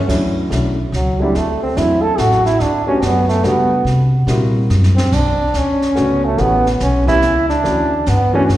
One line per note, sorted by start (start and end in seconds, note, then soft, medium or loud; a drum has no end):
0.08 0.50 D2 medium
0.08 0.48 F#3 medium
0.08 0.49 A3 medium
0.08 0.49 C#4 medium
0.08 0.50 D4 medium
0.08 0.50 E4 medium
0.08 brush sweep soft
0.08 kick medium
0.08 snare soft
0.08 crash medium
0.50 0.91 B1 medium
0.50 0.75 F#3 medium
0.50 0.75 A3 medium
0.50 0.75 C#4 medium
0.50 0.76 D4 medium
0.50 0.76 E4 medium
0.50 snare medium
0.50 hi-hat pedal soft
0.92 1.33 C#2 medium
0.92 1.22 F#3 medium
0.92 snare soft
1.20 1.33 F#3 medium
1.20 1.39 G3 medium
1.20 1.33 A3 medium
1.20 1.34 C4 medium
1.20 1.34 D4 medium
1.20 1.34 E4 medium
1.35 1.76 D2 medium
1.35 1.62 A3 medium
1.35 brush sweep soft
1.35 snare soft
1.63 1.79 C4 medium
1.77 2.18 E2 medium
1.77 2.40 F#3 medium
1.77 2.41 A3 medium
1.77 2.41 C4 medium
1.77 2.41 D4 medium
1.77 2.04 E4 medium
1.77 2.41 E4 medium
1.77 snare soft
2.02 2.21 A4 loud
2.18 2.59 A1 medium
2.18 2.45 F#4 medium
2.18 snare medium
2.18 hi-hat pedal medium
2.32 snare soft
2.46 2.63 E4 medium
2.46 snare soft
2.60 3.01 D2 medium
2.60 2.87 D4 medium
2.60 brush sweep soft
2.60 snare soft
2.86 3.41 A3 medium
2.86 3.42 B3 medium
2.86 3.05 C#4 medium
2.86 3.42 D4 medium
2.86 3.42 F#4 medium
2.86 3.41 G4 medium
3.02 3.43 F#2 medium
3.02 3.28 B3 medium
3.02 snare medium
3.02 hi-hat pedal soft
3.29 3.46 A3 medium
3.29 snare soft
3.43 3.84 C#3 medium
3.43 3.68 G3 medium
3.43 3.69 A3 medium
3.43 3.69 B3 medium
3.43 3.87 B3 medium
3.43 3.69 D4 medium
3.43 3.70 F#4 medium
3.43 snare soft
3.84 4.26 C3 medium
3.84 brush sweep soft
3.84 snare soft
4.27 4.69 A#2 medium
4.27 4.92 G3 medium
4.27 4.92 A#3 medium
4.27 4.92 C4 medium
4.27 4.92 E4 medium
4.27 4.93 F#4 medium
4.27 snare medium
4.27 hi-hat pedal medium
4.70 5.11 F#2 medium
4.70 snare soft
4.84 snare medium
4.96 5.15 C4 medium
4.96 snare medium
5.12 5.37 B1 medium
5.12 5.59 D4 medium
5.12 brush sweep soft
5.12 kick medium
5.12 snare soft
5.12 crash medium
5.39 muted upright bass stroke soft
5.54 5.95 D2 medium
5.54 6.26 C#4 medium
5.54 snare medium
5.54 hi-hat pedal medium
5.82 snare soft
5.95 6.38 C#2 medium
5.95 6.20 D3 medium
5.95 6.20 A3 medium
5.95 6.21 B3 medium
5.95 6.21 C#4 medium
5.95 6.21 F#4 medium
5.95 snare soft
6.25 6.42 A3 medium
6.37 6.79 A1 medium
6.37 6.62 E3 medium
6.37 6.63 A3 medium
6.37 6.63 B3 medium
6.37 6.67 B3 medium
6.37 6.63 C#4 soft
6.37 6.63 G4 medium
6.37 brush sweep soft
6.37 snare soft
6.66 snare soft
6.80 7.21 B1 medium
6.80 7.07 C#4 medium
6.80 snare medium
6.80 hi-hat pedal medium
7.06 7.20 E3 medium
7.06 7.21 A3 medium
7.06 7.21 B3 medium
7.06 7.21 C#4 medium
7.06 7.47 E4 loud
7.06 7.21 G4 medium
7.06 kick medium
7.06 snare soft
7.22 7.63 C#2 medium
7.22 snare medium
7.22 hi-hat pedal medium
7.49 8.10 D4 medium
7.49 snare soft
7.64 8.06 D2 medium
7.64 7.88 E3 medium
7.64 7.89 A3 medium
7.64 7.89 C#4 medium
7.64 7.89 D4 medium
7.64 7.90 F#4 medium
7.64 brush sweep medium
7.64 snare soft
8.06 8.48 G2 medium
8.06 8.35 B3 medium
8.06 snare medium
8.06 hi-hat pedal medium
8.33 8.47 E3 medium
8.33 8.47 A3 medium
8.33 8.47 C#4 medium
8.33 8.44 C#4 medium
8.33 8.48 D4 medium
8.33 8.48 F#4 medium
8.49 8.57 F#2 medium
8.49 snare soft